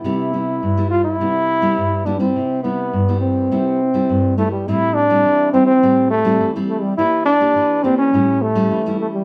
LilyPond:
<<
  \new Staff \with { instrumentName = "Trombone" } { \time 4/4 \key c \major \tempo 4 = 104 e'4. f'16 e'4.~ e'16 d'16 c'16~ | c'8 b4 c'2 a16 g16 | \key a \minor e'8 d'4 c'16 c'8. a4 a16 g16 | e'8 d'4 c'16 cis'8. a4 a16 g16 | }
  \new Staff \with { instrumentName = "Nylon-string guitar" } { \time 4/4 \key c \major << { <g b e'>8 <g b e'>8 r16 <g b e'>8. <g b e'>8. <g b e'>8. <g b e'>16 <g e'>16~ | <g e'>8 <g b e'>8 r16 <g b e'>8. <g b e'>8 r16 <g e'>8. <g b e'>8 | \key a \minor <g c' e'>8. <g c' e'>8. <g c' e'>16 r16 <g c' e'>8. <g c' e'>8 <g c' e'>8. | <bes d' g'>8 r16 <bes d' g'>8. <bes d' g'>8 <g cis' e'>8. <g cis' e'>8 <g cis' e'>8. | } \\ { c4 g,4 c4 g,4 | c4 g,4 c4 g,4 | a,4 e4 a,4 e4 | e4 e4 a,4 e4 | } >> }
>>